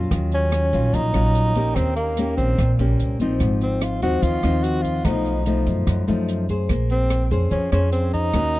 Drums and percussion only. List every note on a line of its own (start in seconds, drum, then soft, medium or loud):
0.11 kick medium
0.11 cross-stick medium
0.11 closed hi-hat soft
0.11 shaker medium
0.32 closed hi-hat soft
0.32 shaker soft
0.52 cross-stick medium
0.52 closed hi-hat soft
0.52 shaker medium
0.73 kick soft
0.73 closed hi-hat soft
0.73 shaker medium
0.94 kick soft
0.94 closed hi-hat soft
0.94 shaker medium
1.14 cross-stick medium
1.14 closed hi-hat soft
1.14 shaker soft
1.35 closed hi-hat soft
1.35 shaker medium
1.55 kick soft
1.55 closed hi-hat soft
1.55 shaker medium
1.76 kick medium
1.76 cross-stick medium
1.76 closed hi-hat soft
1.76 shaker medium
1.96 closed hi-hat soft
1.96 shaker soft
2.17 closed hi-hat soft
2.37 kick soft
2.37 closed hi-hat soft
2.37 shaker medium
2.58 kick medium
2.58 cross-stick medium
2.58 closed hi-hat soft
2.58 shaker medium
2.79 closed hi-hat soft
2.79 shaker soft
3.00 closed hi-hat soft
3.00 shaker medium
3.20 kick soft
3.20 closed hi-hat soft
3.20 shaker medium
3.40 kick medium
3.40 cross-stick soft
3.40 closed hi-hat soft
3.40 shaker medium
3.61 closed hi-hat soft
3.61 shaker soft
3.81 cross-stick medium
3.81 closed hi-hat soft
3.81 shaker medium
4.02 kick soft
4.02 closed hi-hat soft
4.02 shaker medium
4.22 kick medium
4.22 closed hi-hat soft
4.22 shaker medium
4.43 cross-stick medium
4.43 closed hi-hat soft
4.43 shaker soft
4.64 closed hi-hat soft
4.84 kick soft
4.84 closed hi-hat soft
4.84 shaker medium
5.05 kick medium
5.05 cross-stick medium
5.05 closed hi-hat soft
5.05 shaker medium
5.25 closed hi-hat soft
5.25 shaker soft
5.46 closed hi-hat soft
5.66 kick soft
5.66 closed hi-hat soft
5.66 shaker medium
5.87 kick medium
5.87 cross-stick soft
5.87 closed hi-hat soft
5.87 shaker medium
6.08 closed hi-hat soft
6.08 shaker soft
6.28 closed hi-hat soft
6.28 shaker medium
6.49 kick soft
6.49 closed hi-hat soft
6.49 shaker medium
6.69 kick medium
6.69 cross-stick medium
6.69 closed hi-hat soft
6.69 shaker medium
6.90 closed hi-hat soft
6.90 shaker soft
7.10 cross-stick medium
7.10 closed hi-hat soft
7.31 kick soft
7.31 closed hi-hat soft
7.31 shaker medium
7.51 kick medium
7.51 closed hi-hat soft
7.51 shaker medium
7.72 cross-stick medium
7.72 closed hi-hat soft
7.72 shaker soft
7.92 closed hi-hat soft
7.92 shaker medium
8.13 kick soft
8.13 closed hi-hat soft
8.13 shaker medium
8.33 kick medium
8.33 cross-stick medium
8.33 closed hi-hat soft
8.33 shaker medium
8.55 closed hi-hat soft
8.55 shaker soft